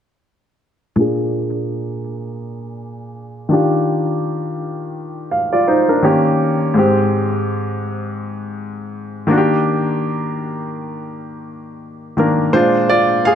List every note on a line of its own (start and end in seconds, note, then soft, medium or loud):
0.96 3.46 A#2 medium
0.96 3.46 A#3 medium
0.96 3.47 D4 medium
1.00 3.48 G#4 medium
3.49 5.99 D#3 medium
3.49 5.27 D4 medium
3.49 5.28 F4 medium
3.53 5.29 G4 medium
5.31 5.51 F5 medium
5.53 5.67 F4 medium
5.53 5.67 D5 medium
5.68 5.88 D#4 medium
5.68 5.87 C5 medium
5.89 6.23 D4 soft
5.89 6.23 A#4 medium
6.03 6.75 D#3 medium
6.03 6.76 A#3 medium
6.03 6.76 C#4 medium
6.03 6.76 G4 medium
6.74 9.24 G#2 medium
6.74 9.25 G#3 medium
6.74 9.25 C4 medium
6.79 9.26 G4 medium
9.27 12.13 D#3 medium
9.27 12.14 A#3 medium
9.27 12.14 D4 medium
9.31 9.37 F#4 medium
9.38 12.18 G4 medium
12.17 12.54 D#3 medium
12.17 12.54 A#3 soft
12.17 12.53 D4 soft
12.17 12.55 A#4 medium
12.53 13.35 A#2 medium
12.53 13.35 G#3 medium
12.53 13.35 D4 medium
12.53 12.88 F4 medium
12.53 12.87 C5 medium
12.89 13.24 F4 medium
12.89 13.23 D5 medium
13.25 13.35 G#4 medium
13.25 13.35 F5 loud